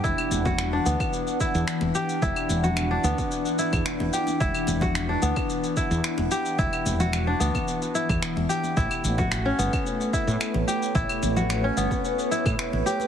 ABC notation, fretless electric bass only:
X:1
M:4/4
L:1/16
Q:1/4=110
K:Edor
V:1 name="Fretless electric bass" clef=bass
E,,, z E,,,3 z D,, z4 E,, z E,,, z2 | E,,, z E,,,3 z D,, z4 E,, z E,,, z2 | E,,, z E,,,3 z D,, z4 E,, z E,,, z2 | E,,, z E,,,3 z D,, z4 E,, z E,,, z2 |
A,,, z A,,,3 z G,,, z4 A,, z A,,, z2 | A,,, z A,,,3 z G,,, z4 A,, z A,,, z2 |]